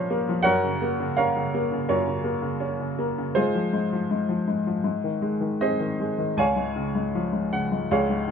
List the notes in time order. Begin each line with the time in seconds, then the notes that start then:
Already playing: A#2 F3 A#3 C#4 C5 C#5 D#5 F5
0.10 A#3
0.29 F3
0.43 F#2 A#4 C#5 F#5
0.64 C#3
0.82 A#3
1.00 C#3
1.17 C#4 A#4 C#5 F5
1.36 C#3
1.54 A#3
1.72 C#3
1.88 F#2 F4 A#4 C#5
2.07 C#3
2.24 A#3
2.42 C#3
2.60 C#4
2.80 C#3
2.99 A#3
3.18 C#3
3.35 G#2 F4 G#4 C5
3.55 F3
3.73 G#2
3.93 F3
4.11 G#2
4.29 F3
4.48 G#2
4.67 F3
4.84 G#2
5.04 D#3
5.22 G#3
5.41 D#3
5.61 C4 G#4 C5 D#5
5.80 D#3
6.00 G#3
6.18 D#3
6.37 C#2 C#5 F5 G#5
6.56 G#2
6.76 C#3
6.95 G#2
7.15 F3
7.33 G#2
7.53 C#3 F#5
7.72 G#2
7.91 C#2 G#4 C#5 F5
8.10 G#2
8.28 C#3